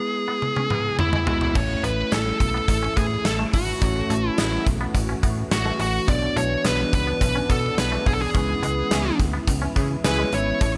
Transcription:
Already playing: tine electric piano G#3 B3 E4 B4, lead electric guitar G#4
0.28 clean electric guitar B3
0.42 muted clean electric guitar stroke, high tom
0.56 clean electric guitar C#4, high tom
0.70 clean electric guitar B3, mid tom
0.99 lead electric guitar E4, muted clean electric guitar stroke, mid tom
1.13 clean electric guitar G#3, mid tom
1.26 tine electric piano G#3 B3 E4 F#4, clean electric guitar G#3, lead electric guitar E4, floor tom
1.41 floor tom
1.54 fm bass A1, analog synth pad E3 A3 E4, tine electric piano A3 C#4 E4 C#5, clean electric guitar A3, lead electric guitar C#5, kick, crash
1.70 muted clean electric guitar stroke
1.83 fm bass A1, clean electric guitar B3, lead electric guitar B4, closed hi-hat
2.12 fm bass A1, clean electric guitar C#4, lead electric guitar A4, snare, closed hi-hat
2.26 muted clean electric guitar stroke
2.40 fm bass B1, lead electric guitar A4, kick, closed hi-hat
2.54 clean electric guitar B3
2.68 fm bass A1, lead electric guitar A4, muted clean electric guitar stroke, kick, closed hi-hat
2.83 clean electric guitar C#4
2.97 fm bass A2, clean electric guitar B3, lead electric guitar G#4, kick, closed hi-hat
3.25 fm bass A1, lead electric guitar A4, muted clean electric guitar stroke, snare, closed hi-hat
3.39 clean electric guitar A3
3.53 fm bass G#1, clean electric guitar E3, lead electric guitar F#4, kick, open hi-hat
3.81 fm bass A1, clean electric guitar F#3, tine electric piano A3 C#4 F#4 C#5, analog synth pad F#4, kick, closed hi-hat
3.96 muted clean electric guitar stroke
4.10 fm bass A1, clean electric guitar A3, closed hi-hat
4.29 lead electric guitar E4
4.38 fm bass A1, clean electric guitar B3, snare, closed hi-hat
4.52 muted clean electric guitar stroke
4.67 fm bass B1, kick, closed hi-hat
4.81 clean electric guitar B3
4.95 fm bass A1, muted clean electric guitar stroke, kick, closed hi-hat
5.09 clean electric guitar C#4
5.23 fm bass A2, clean electric guitar B3, kick, closed hi-hat
5.51 fm bass A1, lead electric guitar F#4, muted clean electric guitar stroke, snare, closed hi-hat
5.65 clean electric guitar A3
5.80 fm bass A1, clean electric guitar E3, lead electric guitar F#4, open hi-hat
6.07 fm bass B1, tine electric piano B3 D4 F#4 C#5, clean electric guitar B3, analog synth pad B3 D4, lead electric guitar D5, kick, closed hi-hat
6.22 muted clean electric guitar stroke
6.36 fm bass B1, clean electric guitar A3, lead electric guitar C#5, closed hi-hat
6.65 fm bass B1, clean electric guitar B3, lead electric guitar B4, snare, closed hi-hat
6.79 muted clean electric guitar stroke
6.93 fm bass C#2, lead electric guitar B4, kick, closed hi-hat
7.07 clean electric guitar B3
7.21 fm bass B1, lead electric guitar B4, muted clean electric guitar stroke, kick, closed hi-hat
7.35 clean electric guitar C#4
7.50 fm bass B2, clean electric guitar B3, lead electric guitar A4, kick, closed hi-hat
7.78 fm bass B1, lead electric guitar B4, muted clean electric guitar stroke, snare, closed hi-hat
7.92 clean electric guitar A3
8.06 fm bass B1, clean electric guitar E3, lead electric guitar G#4, kick, open hi-hat
8.14 lead electric guitar A4
8.22 lead electric guitar G#4
8.34 fm bass C#2, tine electric piano G#3 C#4 E4 B4, clean electric guitar C#4, analog synth pad E4, kick, closed hi-hat
8.49 muted clean electric guitar stroke
8.63 fm bass C#2, clean electric guitar G#3, closed hi-hat
8.91 fm bass C#2, clean electric guitar B3, analog polysynth C#4 E4 G#4, snare, closed hi-hat
9.05 muted clean electric guitar stroke
9.19 fm bass D2, kick, closed hi-hat
9.33 clean electric guitar B3
9.47 fm bass C#2, muted clean electric guitar stroke, kick, closed hi-hat
9.62 clean electric guitar C#4
9.76 fm bass C#3, clean electric guitar B3, analog polysynth C#4 E4 G#4, kick, closed hi-hat
10.04 fm bass C#2, analog polysynth C#4 E4 G#4, lead electric guitar B4, muted clean electric guitar stroke, snare, closed hi-hat
10.19 clean electric guitar G#3
10.32 fm bass G#1, clean electric guitar E3, tine electric piano G#3 C#4 E4 B4, lead electric guitar C#5, closed hi-hat
10.60 fm bass A1, analog synth pad E3 A3, tine electric piano A3 C#4 E4 C#5, clean electric guitar A3, lead electric guitar C#5, kick, closed hi-hat

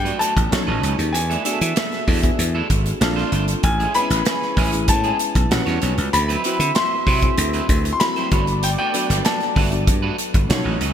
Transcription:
Already playing: slap bass G2, fm electric piano F#3 A3 B3 D4 F#4 A4, horn section A4 B4 D5, grand piano G5
0.05 clean electric guitar A3 D4 F#4 B4, closed hi-hat
0.19 clean electric guitar A3 D4 F#4 B4, grand piano A5, closed hi-hat
0.36 slap bass A1, muted clean electric guitar stroke, kick, closed hi-hat
0.51 slap bass B1, fm electric piano C#4 D#4 F#4 A4, horn section F#4 A4 C#5, muted clean electric guitar stroke, snare, closed hi-hat
0.67 slap bass A1, clean electric guitar F#3 C#4 D#4 B4
0.83 slap bass C#2, clean electric guitar F#3 C#4 D#4 B4, closed hi-hat
0.98 slap bass D#2, muted clean electric guitar stroke, closed hi-hat
1.13 slap bass E2, horn section A4 B4 E5, grand piano G#5, muted clean electric guitar stroke, closed hi-hat
1.30 clean electric guitar A3 D4 E4 A4, closed hi-hat
1.44 clean electric guitar A3 D4 E4 A4, fm electric piano B3 D4 F#4 G#4, closed hi-hat
1.52 fm electric piano A4
1.61 slap bass E3, muted clean electric guitar stroke, closed hi-hat
1.76 muted clean electric guitar stroke, snare, closed hi-hat
1.92 muted clean electric guitar stroke, snare, closed hi-hat
2.07 slap bass E2, clean electric guitar A3 D4 E4 A4, kick, open hi-hat
2.23 fm electric piano B3 D4 F#4 G#4, muted clean electric guitar stroke, kick, closed hi-hat
2.39 slap bass E2, muted clean electric guitar stroke, closed hi-hat
2.55 clean electric guitar A3 D4 E4 A4
2.70 slap bass G#1, kick, closed hi-hat
2.85 muted clean electric guitar stroke, closed hi-hat
3.00 slap bass A#1, fm electric piano C4 D4 F4 A4, horn section A#4 D5 F5, muted clean electric guitar stroke, snare, closed hi-hat
3.16 clean electric guitar A3 D4 F4 C5, snare
3.32 slap bass G1, clean electric guitar A3 D4 F4 C5, closed hi-hat
3.48 muted clean electric guitar stroke, closed hi-hat
3.63 slap bass A1, horn section C#5 E5 G#5, grand piano G#5, muted clean electric guitar stroke, kick, closed hi-hat
3.80 clean electric guitar G#3 C#4 E4 G#4, closed hi-hat
3.94 clean electric guitar G#3 C#4 E4 G#4, fm electric piano B3 E4 G#4 B4, grand piano B5, closed hi-hat
4.00 fm electric piano C#4
4.10 slap bass A1, muted clean electric guitar stroke, snare, closed hi-hat
4.25 muted clean electric guitar stroke, snare, closed hi-hat
4.42 muted clean electric guitar stroke, snare
4.57 slap bass A1, clean electric guitar G#3 C#4 E4 G#4, kick, open hi-hat
4.72 fm electric piano G#3 C#4 E4 B4, muted clean electric guitar stroke, closed hi-hat
4.88 slap bass A2, grand piano A5, muted clean electric guitar stroke, kick, closed hi-hat
5.04 clean electric guitar G#3 C#4 E4 G#4, closed hi-hat
5.19 muted clean electric guitar stroke, closed hi-hat
5.35 slap bass B1, muted clean electric guitar stroke, kick, closed hi-hat
5.51 slap bass A1, fm electric piano C#4 F#4 G4 B4, horn section B4 C#5 F#5, muted clean electric guitar stroke, snare, closed hi-hat
5.66 slap bass E2, clean electric guitar G3 C#4 F#4 C#5, snare, closed hi-hat
5.81 slap bass B1, clean electric guitar G3 C#4 F#4 C#5, closed hi-hat
5.98 slap bass C#2, muted clean electric guitar stroke, closed hi-hat
6.13 slap bass D2, horn section E4 C5 E5, grand piano B5, muted clean electric guitar stroke, closed hi-hat
6.29 clean electric guitar F#3 C4 E4 B4, closed hi-hat
6.44 clean electric guitar F#3 C4 E4 B4, fm electric piano C4 E4 F#4 B4, closed hi-hat
6.60 slap bass D3, muted clean electric guitar stroke, closed hi-hat
6.75 grand piano C6, muted clean electric guitar stroke, snare, closed hi-hat
6.91 muted clean electric guitar stroke
7.07 slap bass C3, clean electric guitar F#3 C4 E4 B4, kick, open hi-hat
7.22 fm electric piano C4 E4 F#4 G#4, muted clean electric guitar stroke, kick, closed hi-hat
7.38 slap bass D2, muted clean electric guitar stroke, closed hi-hat
7.53 clean electric guitar F#3 C4 E4 B4, closed hi-hat
7.69 slap bass D2, kick, closed hi-hat
7.85 muted clean electric guitar stroke, closed hi-hat
7.93 grand piano C6
8.00 fm electric piano C4 E4 F#4 A4, grand piano B5, muted clean electric guitar stroke, snare, closed hi-hat
8.16 clean electric guitar F#3 C4 E4 C5, snare, closed hi-hat
8.31 slap bass G1, clean electric guitar A3 D4 F#4 C#5, fm electric piano B3 D4 F#4 G#4, horn section A4 B4 D5, kick, closed hi-hat
8.47 muted clean electric guitar stroke, closed hi-hat
8.63 grand piano G5, muted clean electric guitar stroke, closed hi-hat
8.78 clean electric guitar A3 D4 F#4 B4, grand piano G5
8.93 fm electric piano F#3 B3 D4 A4, clean electric guitar A3 D4 F#4 B4, closed hi-hat
9.09 slap bass G1, muted clean electric guitar stroke, snare, closed hi-hat
9.24 grand piano A5, muted clean electric guitar stroke, snare, closed hi-hat
9.41 muted clean electric guitar stroke, snare, closed hi-hat
9.56 slap bass G1, clean electric guitar A3 D4 F#4 B4, kick, open hi-hat
9.71 fm electric piano B3 D4 F#4 A4, muted clean electric guitar stroke, closed hi-hat
9.87 slap bass G2, muted clean electric guitar stroke, kick, closed hi-hat
10.02 clean electric guitar A3 D4 F#4 B4
10.18 muted clean electric guitar stroke, closed hi-hat
10.34 slap bass G1, muted clean electric guitar stroke, kick, closed hi-hat
10.49 slap bass B1, fm electric piano C#4 D#4 F#4 A4, horn section F#4 A4 C#5, muted clean electric guitar stroke, snare, closed hi-hat
10.64 slap bass A1, clean electric guitar F#3 C#4 D#4 B4
10.80 slap bass C#2, clean electric guitar F#3 C#4 D#4 B4, closed hi-hat

